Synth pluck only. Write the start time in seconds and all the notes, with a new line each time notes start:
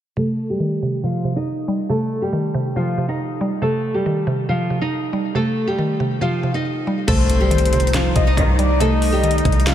0.17 C3
0.60 D#3
0.83 C3
1.04 C3
1.24 C3
1.68 G3
1.90 C3
2.33 D#3
2.54 C3
2.76 C3
2.98 C3
3.41 G3
3.62 C3
4.06 D#3
4.27 C3
4.49 C3
4.70 C3
5.13 G3
5.35 C3
5.79 D#3
6.00 C3
6.21 C3
6.43 C3
6.87 G3
7.08 C3
7.51 D#3
7.73 C3
7.94 C3
8.15 C3
8.59 G3
8.80 C3
9.23 D#3
9.45 C3
9.67 C3